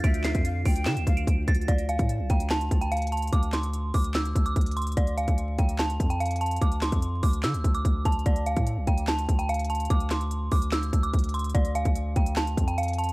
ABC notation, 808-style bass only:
X:1
M:4/4
L:1/16
Q:1/4=146
K:Dm
V:1 name="808-style bass" clef=bass
D,,3 F,,3 D,,2 D, D,, D,,2 D,,2 D,,2 | D,,3 A,,2 C,, D,,4 D,,6 | D,,6 D,,4 D,,2 D,,4 | D,,3 D,,3 D,,4 F,,6 |
D,,3 F,,3 D,,2 D, D,, D,,2 D,,2 D,,2 | D,,3 A,,2 C,, D,,4 D,,6 | D,,6 D,,4 D,,2 D,,4 | D,,3 D,,3 D,,4 F,,6 |]